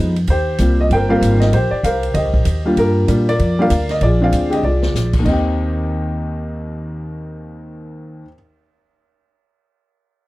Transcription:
Already playing: upright bass F2, upright piano F3 G#3 B3 D#4
0.16 ride
0.27 upright bass D#2, upright piano G4 C5, kick, ride
0.58 upright bass C2, upright piano G3 A#3 C4 F4, kick, hi-hat pedal, ride
0.81 upright piano D#5
0.90 upright bass G1, upright piano A#4 C5 G5, kick, ride
1.09 upright piano G3 A#3 C4 F4 A#4 C5 F5
1.21 upright bass G#1, kick, hi-hat pedal, ride
1.40 upright piano D#5, snare, ride
1.52 upright bass A#1, upright piano G4 C5, kick, ride
1.71 upright piano D5, muted upright bass stroke
1.83 upright bass C2, upright piano A#4 C5 F5, kick, hi-hat pedal, ride
2.03 ride
2.14 upright bass D2, upright piano G4 C5 D#5, kick, ride
2.24 upright bass C2
2.34 upright bass A#1, kick
2.45 upright bass D#2, kick, hi-hat pedal, ride
2.65 upright piano G3 A#3 D4 F4
2.77 upright bass G2, upright piano D4 F4 A#4, kick, ride
3.08 upright bass A#2, upright piano G3 A#3 D4 F4, kick, hi-hat pedal, ride
3.29 upright piano F4 A#4 D5, ride
3.39 upright bass F2, kick, ride
3.59 upright piano G3 A#3 D4 F4 A#4 D5 F5
3.70 upright bass D2, kick, hi-hat pedal, ride
3.89 upright piano D#5, snare, ride
4.01 upright bass A#1, upright piano F4 G#4 D5, kick, ride
4.21 upright piano G#3 C4 D4 F4 G#4 D5 F5
4.32 upright bass D2, kick, hi-hat pedal, ride
4.50 upright piano G#3 C4 D4 G4 D#5, ride
4.63 upright bass C2, upright piano F4 G#4 D5
4.82 snare
4.94 upright bass A#1, snare, hi-hat pedal
5.13 kick, crash
5.19 upright piano D#2 D#3
5.25 upright bass D#2, upright piano C4 D#5, kick, crash
5.31 upright piano G4

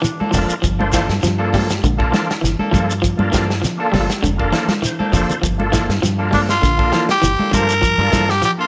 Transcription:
0.02 clean electric guitar E3, closed hi-hat, low conga, shekere
0.20 clean electric guitar A#3 D4 A4, high conga
0.31 fingered electric bass F1, clean electric guitar F3 D4 A4, tonewheel organ A#3 D4 F4, muted clean electric guitar stroke, kick, open hi-hat, shekere
0.35 tonewheel organ A#4, high conga, low conga
0.50 closed hi-hat, shekere
0.62 fingered electric bass G1, clean electric guitar F3, kick, closed hi-hat, shekere
0.79 tonewheel organ A#3 D4 F4 C5, clean electric guitar A#3 D4 A4, high conga
0.93 clean electric guitar E3 F3 A#3 D4 A4, kick, snare, closed hi-hat, shekere
1.09 fingered electric bass G2, snare, closed hi-hat, shekere
1.23 fingered electric bass G2, clean electric guitar F3, snare, closed hi-hat, low conga, shekere
1.39 tonewheel organ A#3 D4 F4 A4, clean electric guitar A#3 D4 A4
1.52 clean electric guitar F3 G3 A#3 A4, kick, open hi-hat, high conga, low conga, shekere
1.70 snare, closed hi-hat, high conga, shekere
1.84 fingered electric bass A#1, clean electric guitar D3, kick, closed hi-hat, high conga, shekere
1.98 tonewheel organ A#3 D4 F4 A#4, clean electric guitar A#3 D4 A4, kick
2.12 clean electric guitar E3 F3 A#3 D4 A4, snare, closed hi-hat, high conga, shekere
2.31 snare, closed hi-hat, shekere
2.41 fingered electric bass G1, clean electric guitar E3, snare, closed hi-hat, low conga, shekere
2.59 clean electric guitar A#3 D4 A4, high conga
2.71 fingered electric bass G2, clean electric guitar F3 A#3 D4 A4, tonewheel organ A#3 D4 F4 A4, kick, closed hi-hat, high conga, low conga, shekere
2.91 closed hi-hat, shekere
3.02 clean electric guitar F3, kick, closed hi-hat, shekere
3.17 fingered electric bass G2, tonewheel organ A#3 D4 F4 A#4, clean electric guitar A#3 D4 A4, high conga
3.32 fingered electric bass G2, clean electric guitar E3 F3 A#3 D4 A4, kick, snare, closed hi-hat, shekere
3.50 snare, shekere
3.62 clean electric guitar F3, snare, closed hi-hat, low conga, shekere
3.77 tonewheel organ A#3 D4 F4 A4, clean electric guitar A#3 D4 A4
3.92 fingered electric bass G1, clean electric guitar F3 G3 A#3 D4 A4, kick, snare, open hi-hat, high conga, low conga, shekere
4.10 snare, closed hi-hat, high conga, shekere
4.23 fingered electric bass F1, clean electric guitar D3, kick, closed hi-hat, high conga, shekere
4.37 tonewheel organ A#3 D4 F4 A#4, clean electric guitar A#3 D4 A4, kick
4.52 clean electric guitar E3 F3 A#3 D4 A4, snare, closed hi-hat, high conga, shekere
4.68 snare, closed hi-hat, high conga, shekere
4.82 clean electric guitar E3, tonewheel organ C5, snare, closed hi-hat, low conga, shekere
4.99 clean electric guitar A#3 D4 A4, high conga
5.12 fingered electric bass F1, clean electric guitar F3 A#3 D4 A4, tonewheel organ A#3 D4 F4 A4, kick, open hi-hat, low conga, shekere
5.29 closed hi-hat, low conga, shekere
5.42 fingered electric bass G1, clean electric guitar F3, kick, closed hi-hat, shekere
5.58 tonewheel organ A#3 D4 F4 A4, clean electric guitar A#3 D4 A4, high conga
5.72 clean electric guitar E3 F3 A#3 D4 A4, kick, snare, closed hi-hat, shekere
5.89 fingered electric bass G2, snare, closed hi-hat, shekere
6.02 fingered electric bass G2, clean electric guitar F3, snare, closed hi-hat, low conga, shekere
6.18 tonewheel organ A#3 D4 F4 A#4, clean electric guitar A#3 D4 A4
6.31 clean electric guitar F3 G3 A#3 D4 A4, tenor saxophone D4, kick, open hi-hat, high conga, low conga, shekere
6.49 tenor saxophone F4, snare, closed hi-hat, shekere
6.62 fingered electric bass A#1, clean electric guitar D3, kick, snare, closed hi-hat, shekere
6.77 tonewheel organ A#3 D4 F4 A#4, clean electric guitar A#3 D4 A4, kick
6.92 clean electric guitar E3 F3 A#3 D4 A4, snare, closed hi-hat, high conga, shekere
7.09 tenor saxophone G4, snare, closed hi-hat, shekere
7.22 fingered electric bass G1, clean electric guitar E3, closed hi-hat, low conga, shekere
7.39 clean electric guitar A#3 D4 A4, high conga
7.51 fingered electric bass G2, clean electric guitar F3 A#3 D4 A4, tonewheel organ A#3 D4 F4 C5, tenor saxophone A#4, muted clean electric guitar stroke, kick, closed hi-hat, high conga, low conga, shekere
7.69 closed hi-hat, shekere
7.82 clean electric guitar F3, kick, closed hi-hat, shekere
7.97 fingered electric bass G2, tonewheel organ A#3 D4 F4 A4, clean electric guitar A#3 D4 A4, high conga
8.12 fingered electric bass G2, clean electric guitar E3 F3 A#3 D4 A4, kick, snare, closed hi-hat, shekere
8.29 tenor saxophone G4, snare, shekere
8.42 clean electric guitar F3, tenor saxophone G4, closed hi-hat, shekere
8.57 tonewheel organ A#3 D4 F4 A4, clean electric guitar A#3 D4 A4, tenor saxophone F4

